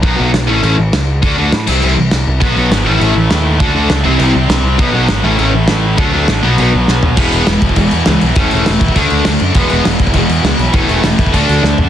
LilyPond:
<<
  \new Staff \with { instrumentName = "Distorted electric guitar" } { \clef bass \time 4/4 \key e \major \tempo 4 = 202 <b, dis fis b dis'>8 <b, dis fis b dis'>8 r8 <a, e a cis' e'>8 <a, e a cis' e'>8 r4. | <d a d' fis'>8 <d a d' fis'>8 r8 <c e g c' e'>8 <c e g c' e'>8 r4. | <b, dis fis b fis'>8 <b, dis fis b fis'>8 r8 <a, e a cis' e'>8 <a, e a cis' e'>8 r4. | <d a d' fis'>8 <d a d' fis'>8 r8 <c e g c' e'>8 <c e g c' e'>8 r4. |
<b, dis fis b dis'>8 <b, dis fis b dis'>8 r8 <a, e a cis' e'>8 <a, e a cis' e'>8 r4. | <d fis a d'>8 <d fis a d'>8 r8 <b, fis b dis'>8 <b, fis b dis'>8 r4. | <e gis b>4 <e gis>8 r8 <e gis>8 r8 <e gis>8 r8 | <e a cis'>4 <e a>8 r8 <d a d'>4 <d a>8 r8 |
<e gis b>4 <e gis>8 r8 <e gis>8 r8 <e gis>8 r8 | <e a cis'>4 <e a>8 r8 <d a d'>4 <d a>8 r8 | }
  \new Staff \with { instrumentName = "Distorted electric guitar" } { \clef bass \time 4/4 \key e \major r1 | r1 | <b, fis b>4. <a, e a>2~ <a, e a>8 | <d a d'>4. <c g c'>2~ <c g c'>8 |
<b, fis b>4. <a, e a>2~ <a, e a>8 | <d a d'>4. <b, fis b>2~ <b, fis b>8 | <e, b, e>2 <e, b, e>2 | <a, e a>2 <d a d'>2 |
<e, b, e>2 <e, b, e>2 | <a, e a>2 <d a d'>2 | }
  \new Staff \with { instrumentName = "Picked electric bass" } { \clef bass \time 4/4 \key e \major b,,8 b,,8 b,,8 a,,8 a,,8 a,,8 cis,4 | d,8 d,8 a,8 c,8 c,8 c,8 c,8 c,8 | b,,8 b,,8 gis,,8 a,,8 a,,8 a,,8 dis,4 | d,8 d,8 cis,8 c,8 c,8 c,8 c,8 c,8 |
b,,8 b,,8 gis,,8 a,,8 a,,8 a,,8 a,,4 | d,8 d,8 a,,8 b,,8 b,,8 b,,8 b,,8 b,,8 | e,,8 e,,8 e,,8 e,,8 e,,8 e,8 cis,8 b,,8 | e,,8 e,,8 e,,8 e,,8 d,8 d,8 d,8 fis,8 |
e,,8 e,,8 e,,8 e,,8 e,,8 e,8 cis,8 b,,8 | e,,8 e,,8 e,,8 dis,8 d,8 d,8 d,8 fis,8 | }
  \new DrumStaff \with { instrumentName = "Drums" } \drummode { \time 4/4 <cymc bd>4 <cymc sn>4 cymc4 <cymc sn>4 | <cymc bd>4 <cymc sn>8 cymc8 cymc4 <cymc sn>4 | <cymc bd>4 <cymc sn>4 cymc4 <cymc sn>4 | <cymc bd>4 <cymc sn>4 cymc4 <cymc sn>4 |
<cymc bd>4 <cymc sn>4 cymc4 <cymc sn>4 | <cymc bd>4 <cymc sn>4 cymc4 sn8 tomfh8 | <cymc bd>8 cymc8 <cymc sn>8 <cymc bd>16 bd16 <cymc bd>8 cymc8 <cymc sn>8 cymc8 | <cymc bd>8 cymc8 <cymc sn>8 <cymc bd>16 bd16 <cymc bd>8 cymc8 <cymc sn>8 cymc8 |
<cymc bd>8 cymc8 <cymc sn>8 <cymc bd>16 bd16 <cymc bd>8 cymc8 <cymc sn>8 cymc8 | <cymc bd>8 cymc8 <cymc sn>8 <cymc bd>16 bd16 <cymc bd>8 cymc8 sn8 tomfh8 | }
>>